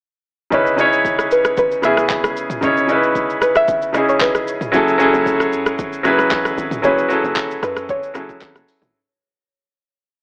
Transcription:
0.50 0.73 C#3 medium
0.50 0.73 C#4 medium
0.50 0.74 D#4 medium
0.50 0.74 E4 medium
0.50 0.75 B4 medium
0.50 1.34 C#5 medium
0.50 kick loud
0.50 shaker medium
0.67 shaker soft
0.77 1.62 C#3 medium
0.77 1.63 C#4 medium
0.77 1.63 D#4 medium
0.77 1.64 E4 medium
0.77 1.64 C#5 medium
0.77 shaker medium
0.93 shaker soft
1.05 kick medium
1.05 shaker medium
1.19 cross-stick medium
1.19 shaker medium
1.31 1.58 B4 medium
1.31 shaker medium
1.45 cross-stick medium
1.45 shaker medium
1.57 1.85 B4 medium
1.57 kick loud
1.57 shaker medium
1.71 shaker medium
1.82 2.47 C#3 medium
1.82 2.48 B3 medium
1.82 2.47 C#4 medium
1.82 2.48 E4 medium
1.82 2.33 E5 loud
1.82 cross-stick medium
1.82 shaker medium
1.86 2.49 G#4 medium
1.97 cross-stick medium
1.97 shaker soft
2.10 kick loud
2.10 clap medium
2.10 shaker medium
2.24 cross-stick loud
2.24 shaker medium
2.37 shaker medium
2.50 mid tom medium
2.50 shaker medium
2.61 2.83 C#3 medium
2.61 2.84 C#4 medium
2.61 2.84 D#4 medium
2.61 2.85 E4 medium
2.61 3.38 C#5 medium
2.61 2.85 C#5 medium
2.61 kick loud
2.61 shaker medium
2.77 shaker soft
2.87 3.73 C#3 medium
2.87 3.73 C#4 medium
2.87 3.74 D#4 medium
2.87 3.74 E4 medium
2.87 3.75 B4 medium
2.87 shaker medium
3.03 shaker soft
3.15 kick medium
3.15 shaker medium
3.30 shaker medium
3.42 3.55 B4 medium
3.42 cross-stick medium
3.42 shaker medium
3.55 4.10 E5 loud
3.55 cross-stick medium
3.55 shaker medium
3.68 kick loud
3.68 shaker medium
3.82 shaker medium
3.93 4.57 C#3 medium
3.93 4.58 C#4 medium
3.93 4.58 D#4 medium
3.93 4.59 E4 medium
3.93 cross-stick medium
3.93 shaker medium
3.97 4.59 G#4 medium
4.09 4.22 C#5 medium
4.09 shaker soft
4.21 4.58 B4 medium
4.21 kick medium
4.21 clap medium
4.21 shaker medium
4.35 cross-stick medium
4.35 shaker medium
4.48 shaker medium
4.61 mid tom loud
4.61 shaker medium
4.72 5.11 F#1 loud
4.72 4.94 F#3 medium
4.72 4.94 C#4 medium
4.72 4.95 E4 medium
4.72 4.95 G#4 medium
4.72 kick loud
4.72 shaker medium
4.76 4.96 A4 loud
4.88 shaker medium
4.98 5.83 F#3 medium
4.98 5.84 C#4 medium
4.98 5.84 E4 medium
4.98 5.85 G#4 medium
4.98 shaker medium
5.02 5.85 A4 medium
5.13 5.54 F#1 loud
5.13 shaker soft
5.26 kick medium
5.26 shaker medium
5.40 cross-stick medium
5.40 shaker medium
5.52 5.90 F#2 loud
5.52 shaker medium
5.66 cross-stick medium
5.66 shaker medium
5.79 kick loud
5.79 shaker medium
5.93 shaker medium
6.03 6.30 F#1 medium
6.03 6.68 F#3 medium
6.03 6.68 C#4 medium
6.03 6.69 E4 medium
6.03 6.69 G#4 medium
6.03 cross-stick medium
6.03 shaker medium
6.07 6.70 B4 medium
6.19 cross-stick medium
6.19 shaker soft
6.31 6.56 A1 loud
6.31 kick medium
6.31 clap medium
6.31 shaker medium
6.45 cross-stick medium
6.45 shaker medium
6.58 6.82 G#1 medium
6.58 shaker medium
6.71 mid tom medium
6.71 shaker medium
6.82 7.21 F#1 loud
6.82 7.04 F#3 medium
6.82 7.05 C#4 medium
6.82 7.05 E4 medium
6.82 7.06 G#4 medium
6.82 7.06 B4 medium
6.82 7.66 C#5 loud
6.82 kick loud
6.82 shaker medium
6.98 shaker soft
7.08 7.94 F#3 medium
7.08 7.94 C#4 medium
7.08 7.95 E4 medium
7.08 7.95 G#4 medium
7.08 7.96 A4 medium
7.08 shaker medium
7.24 7.60 F#1 loud
7.24 shaker soft
7.36 kick medium
7.36 clap loud
7.36 shaker medium
7.51 shaker medium
7.63 8.00 F#2 loud
7.63 7.90 B4 medium
7.63 cross-stick medium
7.63 shaker medium
7.76 cross-stick medium
7.76 shaker medium
7.89 8.65 C#5 loud
7.89 kick loud
7.89 shaker medium
8.03 shaker medium
8.14 8.40 F#1 medium
8.14 8.78 F#3 medium
8.14 8.79 C#4 medium
8.14 8.79 E4 medium
8.14 8.80 G#4 medium
8.14 8.80 A4 medium
8.14 cross-stick medium
8.14 shaker medium
8.29 kick loud
8.29 shaker medium
8.41 8.55 G#1 loud
8.41 kick medium
8.41 clap medium
8.41 shaker medium
8.55 8.67 F#1 medium
8.55 cross-stick medium
8.55 shaker medium
8.68 open hi-hat medium
8.68 shaker medium
8.82 8.94 G#1 medium
8.82 mid tom medium
8.82 shaker medium

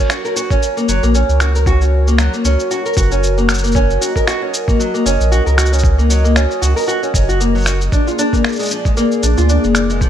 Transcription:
0.00 7.89 F#4 medium
0.00 7.89 A#4 medium
0.00 3.71 C#5 medium
0.10 0.23 F#4 medium
0.10 finger snap medium
0.10 shaker soft
0.25 0.35 A#4 medium
0.25 shaker soft
0.36 0.49 F#4 medium
0.36 shaker medium
0.50 0.75 C#4 medium
0.50 kick medium
0.50 shaker soft
0.63 shaker soft
0.77 0.87 A#3 medium
0.77 shaker soft
0.88 1.00 F#1 medium
0.88 1.01 F#3 medium
0.88 shaker medium
1.03 1.23 A#1 medium
1.03 1.13 A#3 medium
1.03 shaker soft
1.15 1.39 C#4 medium
1.15 shaker soft
1.29 2.29 C#2 medium
1.29 shaker soft
1.40 1.54 F#4 medium
1.40 finger snap medium
1.40 shaker medium
1.55 1.65 A#4 medium
1.55 shaker soft
1.66 1.80 F#4 medium
1.66 kick loud
1.66 shaker soft
1.81 2.06 C#4 medium
1.81 shaker soft
2.08 2.18 A#3 medium
2.08 shaker soft
2.18 2.32 F#3 medium
2.18 finger snap medium
2.18 shaker soft
2.34 2.44 A#3 medium
2.34 shaker soft
2.44 2.56 C#2 medium
2.44 2.70 C#4 medium
2.44 shaker medium
2.60 shaker soft
2.71 2.84 F#4 medium
2.71 shaker soft
2.85 2.96 A#4 medium
2.85 shaker soft
2.93 3.98 F#1 medium
2.93 3.10 F#4 medium
2.93 kick medium
2.93 shaker soft
2.97 shaker medium
3.12 3.36 C#4 medium
3.12 shaker soft
3.23 shaker soft
3.38 3.48 A#3 medium
3.38 shaker soft
3.49 3.62 F#3 medium
3.49 finger snap medium
3.49 shaker medium
3.54 shaker medium
3.58 shaker soft
3.64 3.74 A#3 medium
3.64 shaker soft
3.67 shaker soft
3.72 4.00 C#4 medium
3.72 7.89 D#5 medium
3.72 kick loud
3.72 shaker soft
3.76 shaker soft
3.90 shaker soft
4.01 4.14 F#4 medium
4.01 shaker medium
4.16 4.26 A#4 medium
4.16 kick medium
4.16 shaker soft
4.27 4.40 F#4 loud
4.27 finger snap medium
4.27 shaker soft
4.42 4.67 C#4 medium
4.54 shaker medium
4.68 4.78 A#3 medium
4.68 kick loud
4.68 shaker soft
4.79 4.93 F#3 medium
4.79 shaker soft
4.94 5.04 A#3 medium
4.94 shaker soft
5.05 5.17 F#1 medium
5.05 5.31 C#4 loud
5.05 shaker medium
5.20 5.41 A#1 medium
5.20 shaker soft
5.32 5.45 F#4 medium
5.32 shaker soft
5.46 6.46 C#2 medium
5.46 5.57 A#4 medium
5.46 shaker soft
5.58 5.71 F#4 medium
5.58 finger snap medium
5.58 shaker medium
5.66 shaker medium
5.72 5.97 C#4 medium
5.72 shaker soft
5.79 shaker soft
5.84 kick loud
5.84 shaker soft
5.98 6.09 A#3 medium
5.98 shaker soft
6.10 6.23 F#3 medium
6.10 shaker medium
6.24 6.35 A#3 medium
6.24 shaker soft
6.36 6.61 C#4 medium
6.36 finger snap medium
6.36 shaker soft
6.51 shaker soft
6.62 6.74 C#2 medium
6.62 6.75 F#4 medium
6.62 shaker medium
6.76 6.87 A#4 medium
6.76 shaker soft
6.80 shaker soft
6.83 shaker soft
6.86 7.01 F#4 medium
6.86 shaker soft
6.89 shaker soft
7.03 7.13 C#4 medium
7.03 shaker soft
7.14 7.89 F#1 medium
7.14 7.27 C#4 medium
7.14 kick medium
7.14 shaker medium
7.29 7.39 F#4 medium
7.29 shaker soft
7.40 7.53 A#3 medium
7.40 shaker soft
7.55 7.66 F#3 medium
7.55 shaker soft
7.57 shaker soft
7.60 shaker soft
7.62 shaker soft
7.64 7.80 F#4 medium
7.64 finger snap medium
7.64 shaker soft
7.67 shaker medium
7.81 shaker soft
7.92 10.10 A#3 medium
7.92 8.06 D4 medium
7.92 10.10 G#4 medium
7.92 10.10 D5 medium
7.92 kick loud
7.92 shaker soft
8.07 8.18 F4 medium
8.07 shaker soft
8.19 8.32 D4 loud
8.19 shaker medium
8.33 8.58 A#3 medium
8.33 kick medium
8.33 shaker soft
8.44 finger snap medium
8.44 shaker soft
8.49 shaker soft
8.52 shaker soft
8.56 shaker soft
8.59 8.70 G#3 medium
8.59 shaker soft
8.62 shaker soft
8.65 shaker soft
8.68 shaker soft
8.71 8.84 F3 medium
8.71 shaker medium
8.85 8.96 G#3 medium
8.85 kick medium
8.85 shaker soft
8.97 9.22 A#3 medium
8.97 shaker soft
9.12 shaker soft
9.23 9.35 A#1 medium
9.23 9.36 D4 medium
9.23 shaker medium
9.38 9.58 D2 medium
9.38 9.48 F4 medium
9.38 shaker soft
9.49 9.62 D4 medium
9.49 shaker soft
9.64 10.10 F1 medium
9.64 9.88 A#3 medium
9.64 shaker soft
9.75 finger snap medium
9.75 shaker medium
9.90 10.00 G#3 medium
9.90 shaker soft
10.01 10.10 F3 medium
10.01 kick loud
10.01 shaker soft

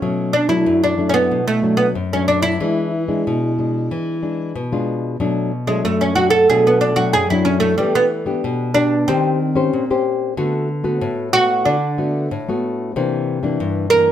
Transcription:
0.00 0.64 B2 medium
0.00 0.33 F#3 medium
0.00 0.33 A3 medium
0.00 0.37 C#4 medium
0.33 0.49 D4 medium
0.49 0.93 F#3 medium
0.49 0.94 A3 medium
0.49 0.94 D4 medium
0.49 0.83 E4 medium
0.66 1.28 F#2 medium
0.84 1.09 D4 medium
0.98 1.40 F#3 soft
0.98 1.41 A3 medium
0.98 1.41 D4 medium
1.09 1.16 C#4 medium
1.14 1.47 B3 medium
1.31 1.93 B2 medium
1.48 1.77 A3 medium
1.63 1.94 F#3 soft
1.63 1.94 A3 soft
1.63 1.94 D4 medium
1.77 1.86 B3 medium
1.95 2.58 F#2 medium
2.13 2.56 F#3 medium
2.13 2.56 A3 medium
2.13 2.28 C#4 medium
2.13 2.57 D4 medium
2.28 2.42 D4 medium
2.42 4.50 E4 medium
2.60 3.22 E3 medium
2.60 2.91 G#3 soft
2.60 2.92 D4 medium
3.08 3.53 G#3 medium
3.08 3.52 D4 medium
3.27 3.88 B2 medium
3.58 4.18 G#3 medium
3.58 4.18 D4 soft
3.91 4.52 E3 medium
4.23 4.53 G#3 soft
4.23 4.53 D4 soft
4.55 5.17 B2 medium
4.72 5.15 G#3 medium
4.72 5.15 D4 medium
4.72 5.15 F4 medium
5.20 5.82 B2 medium
5.20 5.50 F#3 medium
5.20 5.51 A3 medium
5.20 5.51 D4 medium
5.67 6.11 F#3 medium
5.67 5.84 G#3 medium
5.67 6.11 A3 medium
5.67 6.12 D4 medium
5.85 6.46 F#2 medium
5.85 6.00 A3 medium
6.01 6.15 C#4 medium
6.15 6.36 F#3 medium
6.15 6.36 A3 medium
6.15 6.36 D4 medium
6.15 6.30 F#4 medium
6.30 6.47 A4 medium
6.50 7.11 B2 medium
6.50 6.93 F#3 medium
6.50 6.93 A3 medium
6.50 6.93 D4 medium
6.50 6.65 G#4 medium
6.67 6.80 B3 medium
6.81 6.97 D4 medium
6.96 7.24 F#3 medium
6.96 7.24 A3 medium
6.96 7.25 D4 medium
6.96 7.13 F#4 medium
7.13 7.76 F#2 medium
7.13 7.29 G#4 medium
7.30 7.74 F#3 medium
7.30 7.74 A3 medium
7.30 7.74 D4 medium
7.30 7.46 E4 medium
7.45 7.60 C#4 medium
7.60 7.77 A3 medium
7.78 8.40 E3 medium
7.78 7.94 G3 medium
7.78 8.09 B3 medium
7.78 8.09 D4 medium
7.78 8.09 G4 medium
7.95 8.05 B3 medium
8.26 8.70 B3 medium
8.26 8.70 D4 medium
8.26 8.70 G4 medium
8.44 9.05 B2 medium
8.74 8.94 B3 medium
8.74 9.06 D4 medium
8.74 8.95 D4 medium
8.74 8.95 G4 medium
9.08 9.70 D#3 medium
9.08 10.01 C4 medium
9.08 9.39 G4 medium
9.08 9.39 C5 medium
9.55 9.83 C#4 medium
9.55 9.83 G4 medium
9.55 9.83 C5 medium
9.73 10.34 A#2 medium
9.90 10.33 C#4 medium
9.90 10.33 G4 medium
9.90 10.33 C5 medium
10.37 10.99 D3 medium
10.37 10.68 A3 medium
10.37 10.68 B3 medium
10.37 10.68 F#4 medium
10.84 11.28 A3 medium
10.84 11.28 B3 medium
10.84 11.28 F#4 medium
11.01 11.63 A2 medium
11.33 11.75 A3 medium
11.33 11.75 B3 medium
11.33 11.65 F#4 loud
11.33 11.76 F#4 medium
11.65 12.27 D3 medium
11.65 12.59 D4 medium
11.98 12.29 A3 soft
11.98 12.28 B3 medium
11.98 12.29 F#4 medium
12.31 12.92 A2 medium
12.48 12.91 A3 medium
12.48 12.91 B3 medium
12.48 12.91 F#4 medium
12.96 13.57 C3 medium
12.96 13.39 E3 medium
12.96 13.39 A#3 medium
12.96 13.39 D4 medium
13.43 13.86 E3 medium
13.43 13.87 A#3 medium
13.43 13.87 D4 medium
13.60 14.12 G2 medium
13.90 14.11 E3 medium
13.90 14.11 A#3 medium
13.90 14.11 D4 medium
13.90 14.12 A#4 loud

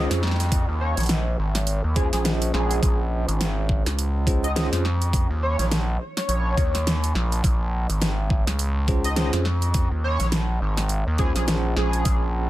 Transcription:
0.00 0.21 C#4 medium
0.00 0.21 F4 medium
0.00 0.21 G#4 medium
0.00 0.21 C5 loud
0.00 downlifter medium
0.11 0.66 F2 loud
0.11 snare medium
0.11 closed hi-hat medium
0.23 snare medium
0.27 snare soft
0.31 snare soft
0.36 snare soft
0.40 snare soft
0.40 closed hi-hat medium
0.43 snare soft
0.46 snare soft
0.49 kick loud
0.49 snare soft
0.49 closed hi-hat medium
0.69 0.95 D#2 loud
0.81 1.02 C#5 loud
0.97 1.37 A#1 loud
0.97 snare soft
0.97 closed hi-hat medium
1.00 closed hi-hat soft
1.03 closed hi-hat soft
1.06 snare loud
1.06 closed hi-hat soft
1.09 closed hi-hat medium
1.39 1.82 G#1 loud
1.55 snare medium
1.55 closed hi-hat medium
1.67 closed hi-hat medium
1.84 2.10 D#2 loud
1.96 4.24 C#4 medium
1.96 4.24 F4 medium
1.96 2.07 G#4 medium
1.96 4.24 G#4 medium
1.96 4.24 C5 medium
1.96 kick loud
1.96 closed hi-hat soft
2.13 2.52 A#1 medium
2.13 2.21 G#4 medium
2.13 snare soft
2.13 closed hi-hat medium
2.25 snare loud
2.25 closed hi-hat medium
2.42 closed hi-hat medium
2.53 2.81 A#1 loud
2.53 2.99 G#4 loud
2.53 snare medium
2.71 closed hi-hat medium
2.83 3.26 A#1 loud
2.83 kick loud
2.83 closed hi-hat medium
3.28 3.83 G#1 loud
3.28 closed hi-hat medium
3.41 snare loud
3.41 closed hi-hat medium
3.69 kick loud
3.86 4.70 C#2 medium
3.86 snare medium
3.86 closed hi-hat medium
3.99 closed hi-hat medium
4.27 4.46 C#4 medium
4.27 4.46 F4 medium
4.27 4.46 G#4 medium
4.27 4.46 C5 medium
4.27 kick loud
4.27 closed hi-hat soft
4.44 4.51 D#5 medium
4.44 closed hi-hat medium
4.56 4.83 C#4 medium
4.56 4.83 F4 medium
4.56 4.83 G#4 medium
4.56 4.83 C5 loud
4.56 4.67 D#5 medium
4.56 snare loud
4.56 closed hi-hat medium
4.73 5.28 F2 loud
4.73 snare medium
4.73 closed hi-hat medium
4.85 snare medium
5.02 closed hi-hat medium
5.13 kick loud
5.13 closed hi-hat medium
5.30 5.56 D#2 loud
5.43 5.64 C#5 loud
5.59 5.98 A#1 loud
5.59 snare soft
5.59 closed hi-hat medium
5.71 snare loud
5.71 closed hi-hat medium
6.17 6.97 C#5 loud
6.17 snare medium
6.17 closed hi-hat medium
6.29 6.56 A#1 loud
6.29 closed hi-hat medium
6.57 7.13 D#2 loud
6.57 kick loud
6.57 closed hi-hat soft
6.75 snare soft
6.75 closed hi-hat medium
6.87 snare loud
6.87 closed hi-hat medium
7.04 closed hi-hat medium
7.15 7.42 A#1 loud
7.15 snare soft
7.32 closed hi-hat medium
7.44 7.87 A#1 loud
7.44 kick loud
7.44 closed hi-hat medium
7.90 8.45 G#1 medium
7.90 closed hi-hat medium
8.02 snare loud
8.02 closed hi-hat medium
8.30 kick loud
8.47 9.31 C#2 loud
8.47 snare medium
8.47 closed hi-hat medium
8.59 closed hi-hat medium
8.88 9.07 C#4 medium
8.88 9.07 F4 medium
8.88 9.07 G#4 medium
8.88 9.07 C5 medium
8.88 kick loud
8.88 closed hi-hat soft
9.04 9.13 D#5 medium
9.04 closed hi-hat medium
9.16 9.44 C#4 medium
9.16 9.44 F4 medium
9.16 9.44 G#4 medium
9.16 9.44 C5 loud
9.16 9.28 D#5 medium
9.16 snare loud
9.16 closed hi-hat medium
9.33 9.89 F2 loud
9.33 snare soft
9.33 closed hi-hat medium
9.45 snare medium
9.62 closed hi-hat medium
9.74 kick loud
9.74 closed hi-hat medium
9.91 10.18 D#2 loud
10.04 10.26 C#5 loud
10.20 10.59 A#1 loud
10.20 snare soft
10.20 closed hi-hat medium
10.32 snare loud
10.32 closed hi-hat medium
10.61 11.04 G#1 loud
10.77 snare medium
10.77 closed hi-hat medium
10.89 closed hi-hat medium
11.07 11.33 D#2 loud
11.18 12.50 C#4 medium
11.18 12.50 F4 medium
11.18 11.30 G#4 medium
11.18 12.50 G#4 medium
11.18 12.50 C5 medium
11.18 kick loud
11.18 closed hi-hat soft
11.36 11.75 A#1 loud
11.36 11.44 G#4 medium
11.36 snare soft
11.36 closed hi-hat medium
11.48 snare loud
11.48 closed hi-hat medium
11.77 12.04 A#1 loud
11.77 12.23 G#4 loud
11.77 snare medium
11.93 closed hi-hat medium
12.05 12.49 A#1 loud
12.05 kick loud
12.05 closed hi-hat medium

